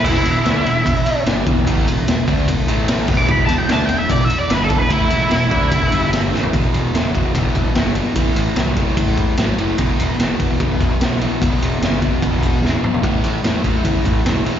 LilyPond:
<<
  \new Staff \with { instrumentName = "Lead electric guitar" } { \time 4/4 \key e \minor \tempo 4 = 148 e'2. r4 | r2. \tuplet 3/2 { r4 d'''8 } | \tuplet 3/2 { b''8 a''8 g''8 a''8 g''8 e''8 d''8 e''8 d''8 b'8 a'8 b'8 } | e'2. r4 |
r1 | r1 | r1 | r1 |
r1 | }
  \new Staff \with { instrumentName = "Distorted electric guitar" } { \clef bass \time 4/4 \key e \minor <e, b, e>8 <e, b,>8 <d a d'>8 <e, b,>8 <e, b,>8 r8 <g, d g>8 <e, b, e>8 | <a, e a>8 <e, b,>8 <e, b,>8 <d a d'>8 <e, b,>8 <a, e a>4 <e, b, e>8 | <e, b, e>8 <e, b,>8 <d a d'>8 <e, b,>8 <e, b,>8 r8 <g, d g>8 <e, b, e>8 | <a, e a>8 <e, b,>8 <e, b,>8 <d a d'>8 <e, b, e>8 <g, d g>4 <a, e a>8 |
<e, b,>4 <e, cis>8 <e, b,>8 <e, b,>4 <e, cis>8 <e, b,>8 | <a, e>4 <a, fis>8 <a, e>8 <a, e>4 <a, fis>8 <a, e>8 | <e, b,>4 <e, cis>8 <e, b,>8 <e, b,>4 <e, cis>8 <e, b,>8 | <e, b,>4 <e, cis>8 <e, b,>8 <e, b,>4 <e, cis>8 <e, b,>8 |
<a, e>4 <a, fis>8 <a, e>8 <a, e>4 <a, fis>8 <a, e>8 | }
  \new Staff \with { instrumentName = "Picked electric bass" } { \clef bass \time 4/4 \key e \minor e,,8 e,,8 d,8 e,,8 e,,8 r8 g,,8 e,,8 | a,,8 e,,8 e,,8 d,8 e,,8 a,,4 e,,8 | e,,8 e,,8 d,8 e,,8 e,,8 r8 g,,8 e,,8 | a,,8 e,,8 e,,8 d,8 e,,8 g,,4 a,,8 |
e,,8 e,,8 e,,8 e,,8 b,,8 e,,8 g,,4 | a,,8 a,,8 c,4 a,,4 a,,8 fis,,8 | e,,8 e,,8 e,,8 e,,8 b,,8 e,,8 b,,4 | e,,8 e,,8 g,,4 e,,4 e,,8 e,,8 |
a,,8 a,,8 a,,8 a,,8 e,8 a,,8 e,,4 | }
  \new DrumStaff \with { instrumentName = "Drums" } \drummode { \time 4/4 <cymc bd cymr>8 cymr8 <cymr sn>8 cymr8 <bd cymr>8 cymr8 <cymr sn>8 <bd cymr>8 | <bd cymr>8 cymr8 <cymr sn>8 <bd cymr>8 <bd cymr>8 cymr8 <cymr sn>8 <cymc bd>8 | bd8 cymr8 <cymr sn>8 cymr8 <bd cymr>8 cymr8 <cymr sn>8 <bd cymr>8 | <bd cymr>8 cymr8 <cymr sn>8 <bd cymr>8 <bd cymr>8 cymr8 <cymr sn>8 sn16 tomfh16 |
<bd cymr>8 cymr8 <cymr sn>8 <bd cymr>8 <bd cymr>8 <bd cymr>8 <cymr sn>8 cymr8 | <bd cymr>8 cymr8 <cymr sn>8 <bd cymr>8 <bd cymr>8 <bd cymr>8 <cymr sn>8 cymr8 | <bd cymr>8 cymr8 <cymr sn>8 <bd cymr>8 <bd cymr>8 <bd cymr>8 <cymr sn>8 cymr8 | <bd cymr>8 cymr8 <cymr sn>8 <bd cymr>8 <bd cymr>8 <bd cymr>8 sn8 toml16 tomfh16 |
<bd cymr>8 cymr8 <cymr sn>8 <bd cymr>8 <bd cymr>8 <bd cymr>8 <cymr sn>8 cymr8 | }
>>